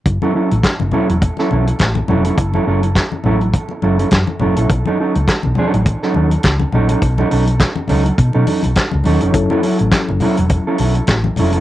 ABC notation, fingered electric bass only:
X:1
M:4/4
L:1/16
Q:"Swing 16ths" 1/4=103
K:F#dor
V:1 name="Fingered electric bass" clef=bass
F,,, z2 A,,, z F,,, z E,,,2 z B,,,2 A,,,2 ^E,,,2 | F,,,2 F,,,3 z A,,,3 z F,,,2 F,, z F,,, ^A,,, | B,,, z2 C,, z B,,, z A,,,2 z D,,2 C,,2 ^A,,,2 | B,,,2 B,,,3 z C,,2 B,, B,, z B,,, z C,, D,, ^E,,, |
F,,, z2 A,,, z F,,, z E,,,2 z B,,,2 A,,,2 ^E,,,2 |]